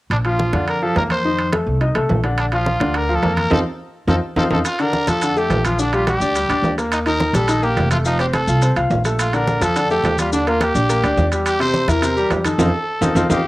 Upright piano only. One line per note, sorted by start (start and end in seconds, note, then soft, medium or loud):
0.25 0.48 F3 medium
0.25 0.49 F4 medium
0.54 0.77 D3 medium
0.54 0.77 D4 medium
0.82 0.94 F3 medium
0.82 0.94 F4 medium
0.96 1.19 A#3 medium
0.96 1.20 A#4 medium
1.25 1.48 D#3 medium
1.25 1.48 D#4 medium
1.53 1.76 A3 medium
1.53 1.77 A4 medium
1.81 1.93 D#4 medium
1.81 1.93 D#5 medium
1.95 2.18 A3 medium
1.95 2.19 A4 medium
2.24 2.47 D3 medium
2.24 2.47 D4 medium
2.52 2.75 F3 medium
2.52 2.76 F4 medium
2.80 3.04 D3 medium
2.80 3.04 D4 medium
3.09 3.20 F3 medium
3.09 3.21 F4 medium
3.23 3.46 A#3 medium
3.23 3.46 A#4 medium
3.51 3.60 C4 medium
3.51 3.60 D#4 medium
3.51 3.60 F4 medium
4.08 4.17 C4 medium
4.08 4.17 D#4 medium
4.08 4.17 F4 medium
4.37 4.46 C4 loud
4.37 4.46 D#4 medium
4.37 4.46 F4 medium
4.51 4.60 C4 medium
4.51 4.60 D#4 medium
4.51 4.60 F4 medium
4.79 5.03 D3 medium
4.79 5.03 D4 medium
5.08 5.20 F3 medium
5.08 5.20 F4 medium
5.22 5.34 D3 medium
5.22 5.34 D4 medium
5.37 5.60 A3 medium
5.37 5.60 A4 medium
5.65 5.76 F3 medium
5.65 5.77 F4 medium
5.79 5.90 D3 medium
5.79 5.90 D4 medium
5.93 6.16 G3 medium
5.93 6.16 G4 medium
6.21 6.33 D4 medium
6.21 6.33 D5 medium
6.35 6.47 G3 medium
6.35 6.47 G4 medium
6.50 6.73 D4 medium
6.50 6.73 D5 medium
6.78 7.01 A#3 medium
6.78 7.01 A#4 medium
7.06 7.29 D#3 medium
7.06 7.29 D#4 medium
7.35 7.46 G3 medium
7.35 7.46 G4 medium
7.49 7.60 D#3 medium
7.49 7.60 D#4 medium
7.63 7.86 A#3 medium
7.63 7.86 A#4 medium
7.91 8.03 A3 medium
7.91 8.03 A4 medium
8.05 8.17 F3 medium
8.05 8.17 F4 medium
8.20 8.43 C4 medium
8.20 8.43 C5 medium
8.48 8.60 F4 medium
8.48 8.60 F5 medium
8.62 8.74 C4 medium
8.62 8.74 C5 medium
8.77 9.00 F4 medium
8.77 9.00 F5 medium
9.05 9.28 A3 medium
9.05 9.28 A4 medium
9.34 9.57 D3 medium
9.34 9.57 D4 medium
9.61 9.73 F3 medium
9.61 9.73 F4 medium
9.76 9.87 D3 medium
9.76 9.88 D4 medium
9.91 10.14 A3 medium
9.91 10.14 A4 medium
10.18 10.30 G3 medium
10.18 10.30 G4 medium
10.33 10.44 D3 medium
10.33 10.44 D4 medium
10.47 10.70 A#3 medium
10.47 10.71 A#4 medium
10.75 10.87 D4 medium
10.75 10.87 D5 medium
10.89 11.01 A#3 medium
10.89 11.01 A#4 medium
11.03 11.27 D4 medium
11.03 11.27 D5 medium
11.32 11.55 G3 medium
11.32 11.55 G4 medium
11.60 11.83 C3 medium
11.60 11.83 C4 medium
11.88 12.00 E3 medium
11.88 12.00 E4 medium
12.02 12.14 C3 medium
12.02 12.14 C4 medium
12.17 12.40 G3 medium
12.17 12.40 G4 medium
12.45 12.57 D#3 medium
12.45 12.57 D#4 medium
12.59 12.68 C4 medium
12.59 12.68 D#4 medium
12.59 12.68 F4 medium
13.01 13.11 C4 medium
13.01 13.11 D#4 medium
13.01 13.11 F4 medium
13.16 13.25 C4 medium
13.16 13.25 D#4 medium
13.16 13.25 F4 medium
13.30 13.39 C4 medium
13.30 13.39 D#4 medium
13.30 13.39 F4 medium